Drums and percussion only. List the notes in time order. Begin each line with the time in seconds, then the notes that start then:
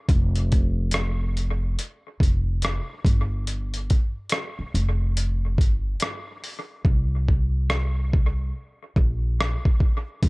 0.09 kick, closed hi-hat
0.36 closed hi-hat
0.52 kick, closed hi-hat
0.91 cross-stick, closed hi-hat
1.37 closed hi-hat
1.79 closed hi-hat
2.20 kick, closed hi-hat
2.62 cross-stick, closed hi-hat
3.05 kick, closed hi-hat
3.47 closed hi-hat
3.74 closed hi-hat
3.90 kick, closed hi-hat
4.29 cross-stick, closed hi-hat
4.75 closed hi-hat
5.17 closed hi-hat
5.58 kick, closed hi-hat
6.00 cross-stick, closed hi-hat
6.44 open hi-hat
6.85 kick
7.29 kick
7.70 cross-stick
8.13 kick
8.96 kick
9.41 cross-stick
9.65 kick
9.80 kick
10.23 kick, closed hi-hat